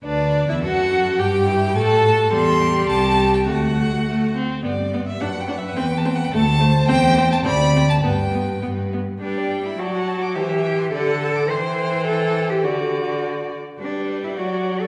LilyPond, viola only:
\new Staff \with { instrumentName = "Viola" } { \time 2/4 \key g \major \tempo 4 = 105 d'8. e'16 fis'4 | g'4 a'4 | g2 | a4 a8 c'8 |
b8 b8 d'8 d'8 | c'8 c'8 a8 a8 | c'8 c'8 c'8 c'8 | b8 b8 b8 b8 |
g4 fis4 | e4 d4 | e2 | d4. r8 |
g4 fis4 | }